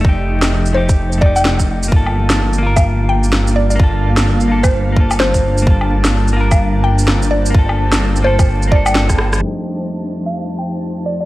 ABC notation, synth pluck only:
X:1
M:4/4
L:1/16
Q:"Swing 16ths" 1/4=128
K:Gm
V:1 name="Synth pluck"
z6 c2 z2 d g4 z | z6 z f2 z g2 z2 d d | z6 z c2 z3 c4 | z6 z f2 z g2 z2 d2 |
z6 c2 z2 d g4 z | z6 z f2 z g2 z2 d d |]